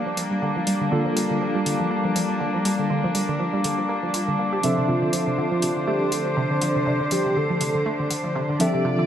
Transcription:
0.00 0.89 G3 medium
0.00 4.59 G3 medium
0.00 0.89 A#3 medium
0.00 4.60 A#3 medium
0.00 0.89 D4 medium
0.00 9.06 D4 medium
0.00 0.89 F4 medium
0.00 0.90 A4 medium
0.06 0.13 F3 medium
0.17 0.26 F3 medium
0.17 open hi-hat medium
0.31 0.41 G3 medium
0.42 0.47 D3 loud
0.56 0.60 F3 medium
0.67 0.72 G3 medium
0.67 open hi-hat medium
0.81 0.88 D3 medium
0.91 1.05 D3 loud
0.91 4.60 G3 medium
0.91 4.61 A#3 medium
0.91 4.61 D4 medium
0.91 4.61 F4 medium
0.91 4.61 A4 medium
1.05 1.10 F3 medium
1.16 1.25 G3 medium
1.16 open hi-hat loud
1.30 1.41 D3 medium
1.42 1.50 F3 medium
1.55 1.65 G3 medium
1.66 1.75 D3 medium
1.66 open hi-hat medium
1.80 1.87 F3 medium
1.91 1.96 A#3 loud
2.04 2.12 F3 medium
2.16 2.24 F3 medium
2.16 open hi-hat loud
2.29 2.40 G3 medium
2.40 2.46 D3 medium
2.54 2.58 F3 medium
2.65 2.70 G3 medium
2.65 open hi-hat medium
2.79 2.86 D3 medium
2.90 3.03 D3 loud
3.04 3.08 F3 loud
3.15 3.24 G3 medium
3.15 open hi-hat medium
3.28 3.39 D3 medium
3.40 3.48 F3 medium
3.53 3.64 G3 medium
3.64 3.73 D3 medium
3.64 open hi-hat medium
3.78 3.85 F3 medium
3.89 3.94 A#3 loud
4.03 4.10 F3 medium
4.14 4.23 F4 medium
4.14 open hi-hat medium
4.28 4.35 D3 medium
4.39 4.52 A#3 medium
4.53 4.60 G4 medium
4.63 4.72 C3 medium
4.63 9.06 D3 medium
4.63 8.57 F3 medium
4.63 8.57 C4 medium
4.63 8.58 D4 medium
4.63 8.58 A4 medium
4.63 8.56 C5 medium
4.63 8.58 E5 medium
4.63 open hi-hat medium
4.77 4.84 C3 medium
4.88 5.02 C3 loud
4.88 5.34 F4 medium
5.02 5.06 D3 medium
5.13 5.22 F3 medium
5.13 open hi-hat medium
5.27 5.37 C3 medium
5.37 5.47 D3 loud
5.37 5.88 F4 medium
5.52 5.62 F3 medium
5.62 5.71 C3 medium
5.62 open hi-hat medium
5.76 5.83 D3 medium
5.87 5.93 A3 loud
5.87 6.14 G4 medium
6.01 6.08 D3 medium
6.12 6.21 D3 medium
6.12 6.36 A4 medium
6.12 open hi-hat medium
6.25 6.36 F3 medium
6.37 6.42 C3 loud
6.37 6.89 C5 medium
6.51 6.55 D3 medium
6.62 6.67 F3 medium
6.62 open hi-hat medium
6.75 6.83 C3 medium
6.86 7.00 C3 loud
6.86 7.11 D5 loud
7.00 7.04 D3 loud
7.11 7.20 F3 medium
7.11 7.39 G4 medium
7.11 open hi-hat medium
7.25 7.36 C3 medium
7.36 7.45 D3 medium
7.36 8.11 A4 medium
7.50 7.60 F3 medium
7.61 7.70 C3 medium
7.61 open hi-hat medium
7.75 7.82 D3 medium
7.86 7.91 A3 loud
7.99 8.07 D3 medium
8.11 8.19 D3 medium
8.11 open hi-hat medium
8.24 8.35 F3 medium
8.35 8.41 C3 medium
8.49 8.53 D3 medium
8.59 9.06 F3 medium
8.59 8.65 F3 medium
8.59 9.06 C4 medium
8.59 9.06 D4 medium
8.59 8.87 G4 medium
8.59 9.06 A4 medium
8.59 9.06 D5 medium
8.59 9.06 E5 medium
8.59 open hi-hat medium
8.74 8.81 C3 medium
8.85 8.98 C3 loud
8.85 9.06 F4 medium
8.98 9.03 D3 loud

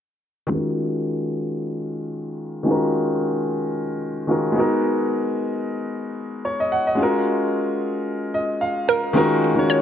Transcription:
0.47 2.61 D#3 medium
0.47 2.61 G#3 medium
0.47 2.62 C#4 medium
0.51 2.63 F4 medium
0.51 2.64 F#4 medium
0.51 2.64 A#4 medium
2.63 4.24 D#3 medium
2.63 4.24 G#3 medium
2.63 4.25 C#4 medium
2.68 4.26 F4 medium
2.68 4.27 F#4 medium
2.68 4.28 A#4 medium
4.27 4.55 D#3 medium
4.27 4.51 G#3 soft
4.27 4.56 C#4 soft
4.27 4.56 F4 soft
4.27 4.56 F#4 medium
4.27 4.57 A#4 medium
4.52 6.66 G#3 medium
4.52 6.67 B3 medium
4.52 6.68 D#4 medium
4.58 6.69 F#4 medium
4.58 6.70 A#4 medium
6.45 6.59 C#5 medium
6.60 6.71 D#5 medium
6.72 6.86 F#5 medium
6.87 7.12 D#5 medium
6.95 9.09 G#3 medium
6.95 9.10 C#4 medium
6.95 9.11 F4 medium
7.01 9.12 F#4 medium
7.01 9.13 A#4 medium
8.34 8.59 D#5 medium
8.61 8.86 F5 medium
8.88 9.65 A#4 medium
8.88 9.13 A#5 medium
9.13 9.47 D#3 medium
9.13 9.47 G#3 medium
9.13 9.48 C#4 medium
9.13 9.48 F4 medium
9.13 9.49 F#4 medium
9.13 9.49 A#4 loud
9.55 9.82 D#3 medium
9.55 9.82 G#3 medium
9.55 9.82 C#4 medium
9.55 9.82 F4 medium
9.55 9.82 F#4 medium
9.55 9.82 C#5 medium
9.70 9.82 C#5 loud

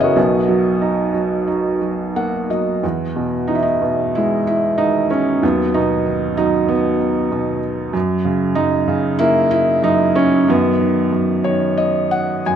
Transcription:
0.00 0.13 F#1 medium
0.00 0.13 F#2 medium
0.00 0.19 C#3 medium
0.00 0.15 E3 medium
0.00 0.19 B3 medium
0.00 2.47 F#4 soft
0.00 2.47 A#4 soft
0.00 0.19 B4 medium
0.00 0.14 C#5 medium
0.00 2.46 D#5 medium
0.00 0.19 E5 medium
0.00 0.19 F#5 medium
0.00 0.19 G#5 loud
0.16 2.79 B1 medium
0.16 2.79 B2 medium
0.48 1.13 F#3 medium
0.82 1.46 D#4 medium
1.14 1.80 F#3 soft
1.47 2.80 D#4 soft
1.81 2.48 F#3 soft
2.16 2.82 A#3 soft
2.16 2.48 F#5 medium
2.50 2.82 F#3 soft
2.50 2.81 D#5 medium
2.83 5.39 E2 medium
3.16 3.80 B2 soft
3.47 4.75 E3 soft
3.47 3.56 D#4 medium
3.55 3.63 E4 medium
3.62 4.16 D#4 medium
3.82 5.07 B2 soft
4.15 5.40 G#3 medium
4.15 4.45 E4 medium
4.47 4.80 E4 medium
4.78 5.41 D#3 soft
4.78 5.08 D#4 medium
5.10 5.44 C#4 medium
5.43 7.90 D#2 medium
5.43 6.36 F#3 medium
5.43 5.76 B3 medium
5.74 6.96 B2 soft
5.74 6.36 D#4 medium
6.06 7.28 D#3 soft
6.37 6.69 F#3 medium
6.37 6.70 D#4 medium
6.68 7.91 F#3 soft
6.68 7.59 B3 medium
7.31 7.92 B2 soft
7.93 8.54 F#2 medium
8.25 8.86 C#3 medium
8.55 9.80 F#2 medium
8.55 9.21 D#4 medium
8.88 10.12 C#3 medium
9.19 10.44 A#3 medium
9.19 9.49 E4 loud
9.51 9.84 E4 loud
9.83 10.46 F#2 medium
9.83 10.13 D#4 loud
10.15 10.46 C#4 medium
10.49 11.11 F#2 medium
10.49 10.80 D#3 medium
10.49 12.42 B3 medium
10.81 11.43 D#3 medium
11.12 12.41 F#2 medium
11.44 12.56 D#3 medium
11.44 11.75 C#5 medium
11.77 12.09 D#5 medium
12.11 12.43 F#5 medium
12.46 12.56 F#2 medium
12.46 12.56 G#5 medium

